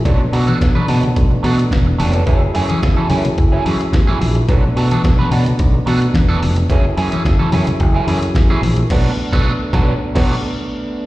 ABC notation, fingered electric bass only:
X:1
M:4/4
L:1/16
Q:1/4=108
K:Bdor
V:1 name="Fingered electric bass" clef=bass
B,,,2 B,,2 B,,,2 B,,2 B,,,2 B,,2 E,,,2 ^E,,,2 | F,,,2 F,,2 F,,,2 F,,2 F,,,2 F,,2 A,,,2 ^A,,,2 | B,,,2 B,,2 B,,,2 B,,2 B,,,2 B,,2 E,,,2 ^E,,,2 | F,,,2 F,,2 F,,,2 F,,2 F,,,2 F,,2 A,,,2 ^A,,,2 |
B,,,2 z B,,,2 z B,,,2 z B,,,2 z4 z |]